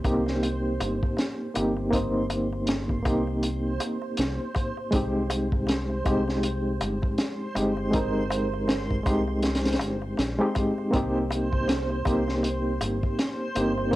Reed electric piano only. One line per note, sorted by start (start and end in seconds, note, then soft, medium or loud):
0.00 0.04 A#3 medium
0.00 0.05 C4 medium
0.00 0.06 D#4 medium
0.00 0.07 G4 medium
0.04 0.23 A#3 medium
0.04 0.24 C4 medium
0.04 0.24 D#4 medium
0.04 0.25 G4 medium
1.54 1.88 A#3 medium
1.54 1.89 C4 medium
1.54 1.89 D#4 medium
1.54 1.90 G4 medium
1.91 3.01 A#3 medium
1.91 3.01 C4 medium
1.91 3.02 D#4 medium
1.95 3.03 C5 medium
3.03 4.88 A#3 medium
3.03 4.88 C4 medium
3.03 4.89 D#4 medium
3.08 4.90 G4 medium
4.91 6.01 G#3 medium
4.91 6.01 C4 medium
4.91 6.02 D#4 medium
4.95 6.03 G4 medium
6.05 6.23 G#3 medium
6.05 6.24 C4 medium
6.05 6.24 D#4 medium
6.05 6.25 G4 medium
7.55 7.89 G#3 medium
7.55 7.89 C4 medium
7.55 7.90 D#4 medium
7.55 7.90 G4 medium
7.91 9.01 G#3 medium
7.91 9.02 C4 medium
7.91 9.02 D#4 medium
7.96 9.03 A#4 medium
9.03 10.34 G#3 medium
9.03 10.35 C4 medium
9.03 10.36 D#4 medium
9.08 10.37 G4 medium
10.39 10.89 G#3 medium
10.39 10.89 C4 medium
10.39 10.89 D#4 medium
10.39 10.90 G4 loud
10.91 12.01 A#3 medium
10.91 12.02 C4 medium
10.91 12.02 D#4 medium
10.96 12.03 G4 medium
12.05 12.24 A#3 medium
12.05 12.24 C4 medium
12.05 12.25 D#4 medium
12.05 12.25 G4 medium
13.55 13.89 A#3 medium
13.55 13.89 C4 medium
13.55 13.90 D#4 medium
13.55 13.90 G4 medium
13.91 13.96 A#3 medium